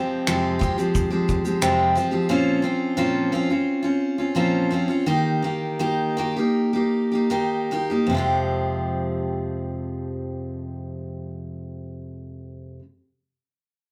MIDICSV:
0, 0, Header, 1, 3, 480
1, 0, Start_track
1, 0, Key_signature, -4, "minor"
1, 0, Tempo, 683371
1, 1621, Time_signature, 4, 2, 24, 8
1, 3072, Tempo, 724638
1, 4512, Tempo, 775194
1, 5472, Tempo, 801068
1, 8958, End_track
2, 0, Start_track
2, 0, Title_t, "Steel-string acoustic guitar"
2, 0, Program_c, 0, 25
2, 0, Note_on_c, 0, 53, 51
2, 0, Note_on_c, 0, 56, 58
2, 0, Note_on_c, 0, 60, 65
2, 0, Note_on_c, 0, 67, 57
2, 184, Note_off_c, 0, 53, 0
2, 189, Note_off_c, 0, 56, 0
2, 189, Note_on_c, 0, 41, 78
2, 190, Note_off_c, 0, 60, 0
2, 191, Note_on_c, 0, 48, 80
2, 193, Note_on_c, 0, 53, 89
2, 196, Note_off_c, 0, 67, 0
2, 197, Note_on_c, 0, 56, 84
2, 199, Note_on_c, 0, 60, 93
2, 203, Note_on_c, 0, 67, 85
2, 407, Note_off_c, 0, 53, 0
2, 411, Note_off_c, 0, 56, 0
2, 416, Note_on_c, 0, 53, 63
2, 419, Note_off_c, 0, 60, 0
2, 419, Note_on_c, 0, 56, 69
2, 424, Note_off_c, 0, 67, 0
2, 428, Note_off_c, 0, 41, 0
2, 428, Note_on_c, 0, 60, 68
2, 429, Note_off_c, 0, 48, 0
2, 433, Note_on_c, 0, 67, 70
2, 536, Note_off_c, 0, 67, 0
2, 540, Note_off_c, 0, 60, 0
2, 542, Note_off_c, 0, 53, 0
2, 543, Note_off_c, 0, 56, 0
2, 545, Note_on_c, 0, 67, 51
2, 549, Note_on_c, 0, 60, 50
2, 554, Note_on_c, 0, 56, 46
2, 561, Note_on_c, 0, 53, 41
2, 767, Note_off_c, 0, 67, 0
2, 774, Note_off_c, 0, 60, 0
2, 775, Note_on_c, 0, 67, 47
2, 781, Note_off_c, 0, 56, 0
2, 783, Note_on_c, 0, 60, 49
2, 786, Note_off_c, 0, 53, 0
2, 789, Note_on_c, 0, 56, 46
2, 794, Note_on_c, 0, 53, 46
2, 1009, Note_off_c, 0, 67, 0
2, 1018, Note_off_c, 0, 60, 0
2, 1018, Note_on_c, 0, 67, 46
2, 1023, Note_off_c, 0, 56, 0
2, 1027, Note_on_c, 0, 60, 42
2, 1029, Note_off_c, 0, 53, 0
2, 1031, Note_on_c, 0, 56, 45
2, 1039, Note_on_c, 0, 53, 38
2, 1130, Note_off_c, 0, 53, 0
2, 1134, Note_off_c, 0, 56, 0
2, 1134, Note_off_c, 0, 60, 0
2, 1135, Note_on_c, 0, 41, 83
2, 1136, Note_off_c, 0, 67, 0
2, 1137, Note_on_c, 0, 48, 85
2, 1138, Note_on_c, 0, 53, 80
2, 1142, Note_on_c, 0, 56, 82
2, 1142, Note_on_c, 0, 60, 83
2, 1144, Note_on_c, 0, 67, 92
2, 1363, Note_off_c, 0, 53, 0
2, 1371, Note_off_c, 0, 56, 0
2, 1372, Note_on_c, 0, 53, 65
2, 1376, Note_off_c, 0, 60, 0
2, 1378, Note_off_c, 0, 41, 0
2, 1379, Note_off_c, 0, 48, 0
2, 1379, Note_on_c, 0, 56, 61
2, 1383, Note_off_c, 0, 67, 0
2, 1384, Note_on_c, 0, 60, 69
2, 1390, Note_on_c, 0, 67, 65
2, 1475, Note_off_c, 0, 67, 0
2, 1482, Note_off_c, 0, 60, 0
2, 1483, Note_on_c, 0, 67, 50
2, 1487, Note_off_c, 0, 56, 0
2, 1490, Note_on_c, 0, 60, 51
2, 1491, Note_off_c, 0, 53, 0
2, 1495, Note_on_c, 0, 56, 43
2, 1500, Note_on_c, 0, 53, 48
2, 1602, Note_off_c, 0, 53, 0
2, 1604, Note_off_c, 0, 60, 0
2, 1608, Note_on_c, 0, 46, 86
2, 1609, Note_off_c, 0, 56, 0
2, 1610, Note_on_c, 0, 53, 89
2, 1612, Note_off_c, 0, 67, 0
2, 1612, Note_on_c, 0, 60, 93
2, 1614, Note_on_c, 0, 61, 86
2, 1623, Note_on_c, 0, 65, 91
2, 1833, Note_off_c, 0, 53, 0
2, 1841, Note_on_c, 0, 53, 54
2, 1843, Note_off_c, 0, 60, 0
2, 1847, Note_off_c, 0, 61, 0
2, 1851, Note_on_c, 0, 60, 64
2, 1853, Note_off_c, 0, 46, 0
2, 1853, Note_off_c, 0, 65, 0
2, 1855, Note_on_c, 0, 61, 65
2, 1861, Note_on_c, 0, 65, 57
2, 2077, Note_off_c, 0, 53, 0
2, 2082, Note_off_c, 0, 60, 0
2, 2085, Note_on_c, 0, 46, 77
2, 2086, Note_off_c, 0, 61, 0
2, 2086, Note_off_c, 0, 65, 0
2, 2086, Note_on_c, 0, 53, 84
2, 2090, Note_on_c, 0, 60, 80
2, 2094, Note_on_c, 0, 61, 84
2, 2095, Note_on_c, 0, 65, 89
2, 2324, Note_off_c, 0, 53, 0
2, 2329, Note_off_c, 0, 60, 0
2, 2333, Note_off_c, 0, 46, 0
2, 2333, Note_on_c, 0, 53, 64
2, 2336, Note_off_c, 0, 61, 0
2, 2337, Note_on_c, 0, 60, 68
2, 2338, Note_off_c, 0, 65, 0
2, 2344, Note_on_c, 0, 61, 64
2, 2352, Note_on_c, 0, 65, 74
2, 2449, Note_off_c, 0, 65, 0
2, 2457, Note_off_c, 0, 53, 0
2, 2457, Note_off_c, 0, 61, 0
2, 2458, Note_on_c, 0, 65, 49
2, 2460, Note_off_c, 0, 60, 0
2, 2465, Note_on_c, 0, 61, 47
2, 2472, Note_on_c, 0, 60, 43
2, 2679, Note_off_c, 0, 65, 0
2, 2687, Note_on_c, 0, 65, 59
2, 2689, Note_off_c, 0, 61, 0
2, 2697, Note_off_c, 0, 60, 0
2, 2697, Note_on_c, 0, 61, 57
2, 2706, Note_on_c, 0, 60, 49
2, 2928, Note_off_c, 0, 65, 0
2, 2937, Note_on_c, 0, 65, 50
2, 2938, Note_off_c, 0, 61, 0
2, 2947, Note_off_c, 0, 60, 0
2, 2947, Note_on_c, 0, 61, 44
2, 2956, Note_on_c, 0, 60, 38
2, 3053, Note_on_c, 0, 46, 80
2, 3055, Note_off_c, 0, 60, 0
2, 3056, Note_off_c, 0, 65, 0
2, 3058, Note_off_c, 0, 61, 0
2, 3060, Note_on_c, 0, 53, 83
2, 3064, Note_on_c, 0, 60, 73
2, 3065, Note_on_c, 0, 65, 89
2, 3067, Note_on_c, 0, 61, 73
2, 3284, Note_off_c, 0, 53, 0
2, 3292, Note_off_c, 0, 60, 0
2, 3292, Note_on_c, 0, 53, 67
2, 3297, Note_off_c, 0, 46, 0
2, 3298, Note_off_c, 0, 61, 0
2, 3300, Note_on_c, 0, 60, 64
2, 3302, Note_off_c, 0, 65, 0
2, 3306, Note_on_c, 0, 61, 62
2, 3312, Note_on_c, 0, 65, 67
2, 3398, Note_off_c, 0, 65, 0
2, 3406, Note_on_c, 0, 65, 54
2, 3408, Note_off_c, 0, 61, 0
2, 3416, Note_off_c, 0, 53, 0
2, 3416, Note_off_c, 0, 60, 0
2, 3416, Note_on_c, 0, 61, 46
2, 3424, Note_on_c, 0, 60, 47
2, 3528, Note_off_c, 0, 60, 0
2, 3529, Note_on_c, 0, 51, 83
2, 3530, Note_off_c, 0, 61, 0
2, 3530, Note_on_c, 0, 58, 78
2, 3533, Note_off_c, 0, 65, 0
2, 3533, Note_on_c, 0, 63, 83
2, 3538, Note_on_c, 0, 67, 96
2, 3760, Note_off_c, 0, 51, 0
2, 3768, Note_on_c, 0, 51, 58
2, 3771, Note_off_c, 0, 58, 0
2, 3772, Note_off_c, 0, 63, 0
2, 3778, Note_off_c, 0, 67, 0
2, 3779, Note_on_c, 0, 58, 62
2, 3780, Note_on_c, 0, 63, 63
2, 3785, Note_on_c, 0, 67, 61
2, 4004, Note_off_c, 0, 51, 0
2, 4005, Note_off_c, 0, 58, 0
2, 4010, Note_off_c, 0, 63, 0
2, 4012, Note_on_c, 0, 51, 69
2, 4013, Note_off_c, 0, 67, 0
2, 4013, Note_on_c, 0, 58, 80
2, 4018, Note_on_c, 0, 63, 89
2, 4021, Note_on_c, 0, 67, 91
2, 4253, Note_off_c, 0, 51, 0
2, 4261, Note_off_c, 0, 58, 0
2, 4261, Note_on_c, 0, 51, 69
2, 4264, Note_off_c, 0, 63, 0
2, 4265, Note_off_c, 0, 67, 0
2, 4269, Note_on_c, 0, 58, 67
2, 4272, Note_on_c, 0, 63, 67
2, 4277, Note_on_c, 0, 67, 74
2, 4383, Note_off_c, 0, 67, 0
2, 4386, Note_off_c, 0, 51, 0
2, 4390, Note_off_c, 0, 58, 0
2, 4391, Note_on_c, 0, 67, 57
2, 4392, Note_off_c, 0, 63, 0
2, 4403, Note_on_c, 0, 63, 49
2, 4408, Note_on_c, 0, 58, 41
2, 4618, Note_off_c, 0, 67, 0
2, 4625, Note_on_c, 0, 67, 54
2, 4627, Note_off_c, 0, 63, 0
2, 4633, Note_off_c, 0, 58, 0
2, 4634, Note_on_c, 0, 63, 44
2, 4640, Note_on_c, 0, 58, 44
2, 4856, Note_off_c, 0, 67, 0
2, 4864, Note_on_c, 0, 67, 46
2, 4868, Note_off_c, 0, 63, 0
2, 4871, Note_off_c, 0, 58, 0
2, 4875, Note_on_c, 0, 63, 45
2, 4885, Note_on_c, 0, 58, 44
2, 4975, Note_off_c, 0, 58, 0
2, 4977, Note_off_c, 0, 63, 0
2, 4977, Note_on_c, 0, 51, 77
2, 4982, Note_off_c, 0, 67, 0
2, 4983, Note_on_c, 0, 58, 82
2, 4984, Note_on_c, 0, 63, 75
2, 4989, Note_on_c, 0, 67, 89
2, 5223, Note_off_c, 0, 51, 0
2, 5226, Note_off_c, 0, 58, 0
2, 5227, Note_off_c, 0, 63, 0
2, 5229, Note_off_c, 0, 67, 0
2, 5233, Note_on_c, 0, 51, 60
2, 5237, Note_on_c, 0, 58, 65
2, 5242, Note_on_c, 0, 63, 68
2, 5246, Note_on_c, 0, 67, 69
2, 5341, Note_off_c, 0, 67, 0
2, 5348, Note_off_c, 0, 63, 0
2, 5348, Note_on_c, 0, 67, 51
2, 5352, Note_off_c, 0, 51, 0
2, 5354, Note_off_c, 0, 58, 0
2, 5355, Note_on_c, 0, 63, 48
2, 5361, Note_on_c, 0, 58, 42
2, 5452, Note_on_c, 0, 41, 82
2, 5471, Note_on_c, 0, 48, 82
2, 5472, Note_off_c, 0, 67, 0
2, 5476, Note_off_c, 0, 63, 0
2, 5478, Note_off_c, 0, 58, 0
2, 5489, Note_on_c, 0, 53, 71
2, 5500, Note_on_c, 0, 56, 78
2, 5513, Note_on_c, 0, 60, 85
2, 5522, Note_on_c, 0, 67, 83
2, 8282, Note_off_c, 0, 41, 0
2, 8291, Note_off_c, 0, 48, 0
2, 8300, Note_off_c, 0, 53, 0
2, 8305, Note_off_c, 0, 56, 0
2, 8312, Note_off_c, 0, 60, 0
2, 8316, Note_off_c, 0, 67, 0
2, 8958, End_track
3, 0, Start_track
3, 0, Title_t, "Drums"
3, 192, Note_on_c, 9, 26, 88
3, 193, Note_on_c, 9, 82, 51
3, 262, Note_off_c, 9, 26, 0
3, 263, Note_off_c, 9, 82, 0
3, 431, Note_on_c, 9, 36, 80
3, 439, Note_on_c, 9, 82, 46
3, 501, Note_off_c, 9, 36, 0
3, 509, Note_off_c, 9, 82, 0
3, 554, Note_on_c, 9, 82, 48
3, 624, Note_off_c, 9, 82, 0
3, 667, Note_on_c, 9, 36, 90
3, 668, Note_on_c, 9, 82, 75
3, 737, Note_off_c, 9, 36, 0
3, 738, Note_off_c, 9, 82, 0
3, 905, Note_on_c, 9, 36, 77
3, 905, Note_on_c, 9, 82, 47
3, 975, Note_off_c, 9, 82, 0
3, 976, Note_off_c, 9, 36, 0
3, 1020, Note_on_c, 9, 82, 45
3, 1090, Note_off_c, 9, 82, 0
3, 1139, Note_on_c, 9, 26, 111
3, 1139, Note_on_c, 9, 82, 73
3, 1209, Note_off_c, 9, 82, 0
3, 1210, Note_off_c, 9, 26, 0
3, 1382, Note_on_c, 9, 82, 46
3, 1453, Note_off_c, 9, 82, 0
3, 8958, End_track
0, 0, End_of_file